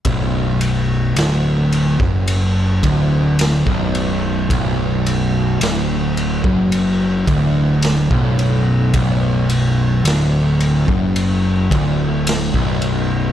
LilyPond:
<<
  \new Staff \with { instrumentName = "Distorted electric guitar" } { \clef bass \time 4/4 \key b \minor \tempo 4 = 54 b,,4 d,8. fis,8. d,8. b,,8. | b,,4 d,8. fis,8. d,8. b,,8. | b,,4 d,8. fis,8. d,8. b,,8. | }
  \new Staff \with { instrumentName = "Picked electric bass" } { \clef bass \time 4/4 \key b \minor b,,,4 d,,8. fis,,8. d,,8. b,,,8. | b,,,4 d,,8. fis,,8. d,,8. b,,,8. | b,,,4 d,,8. fis,,8. d,,8. b,,,8. | }
  \new DrumStaff \with { instrumentName = "Drums" } \drummode { \time 4/4 <bd cymr>8 cymr8 <cymr sn>8 cymr16 bd16 cymr8 <bd cymr>8 <cymr sn>16 bd16 cymr8 | <bd cymr>8 cymr8 <cymr sn>8 cymr16 bd16 cymr8 <bd cymr>8 <cymr sn>16 bd16 cymr8 | <bd cymr>8 cymr8 <cymr sn>8 cymr16 bd16 cymr8 <bd cymr>8 <cymr sn>16 bd16 cymr8 | }
>>